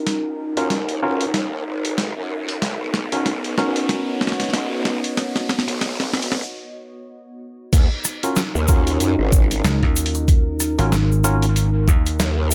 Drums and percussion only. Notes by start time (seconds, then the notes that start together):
0.07 snare, closed hi-hat
0.57 closed hi-hat
0.70 snare, closed hi-hat
0.89 closed hi-hat
1.21 closed hi-hat
1.34 snare, closed hi-hat
1.85 closed hi-hat
1.98 snare, closed hi-hat
2.49 closed hi-hat
2.62 snare, closed hi-hat
2.94 snare
3.12 closed hi-hat
3.26 snare, closed hi-hat
3.44 closed hi-hat
3.58 snare
3.76 closed hi-hat
3.89 snare, closed hi-hat
4.21 snare
4.27 snare
4.32 snare
4.40 snare, closed hi-hat
4.43 snare
4.49 snare
4.54 snare, closed hi-hat
4.85 snare
5.04 closed hi-hat
5.17 snare, closed hi-hat
5.36 snare
5.49 snare
5.59 snare
5.68 closed hi-hat
5.81 snare, closed hi-hat
6.00 snare, closed hi-hat
6.13 snare
6.22 closed hi-hat
6.32 snare
7.73 kick, closed hi-hat, crash, cabasa
8.04 cross-stick, closed hi-hat, cabasa
8.23 closed hi-hat, cabasa
8.36 snare, cabasa
8.55 cabasa
8.68 kick, closed hi-hat, cabasa
8.87 closed hi-hat, cabasa
9.00 closed hi-hat, cabasa
9.32 kick, cabasa
9.51 closed hi-hat, cabasa
9.64 snare, closed hi-hat, cabasa
9.83 kick, cross-stick
9.96 closed hi-hat, cabasa
10.06 closed hi-hat
10.15 closed hi-hat, cabasa
10.28 kick, closed hi-hat, cabasa
10.60 cross-stick, closed hi-hat, cabasa
10.79 closed hi-hat, cabasa
10.92 snare, cabasa
11.12 cabasa
11.24 closed hi-hat, cabasa
11.42 closed hi-hat, cabasa
11.56 closed hi-hat, cabasa
11.88 kick, cabasa
12.06 closed hi-hat, cabasa
12.19 snare, closed hi-hat, cabasa
12.51 cabasa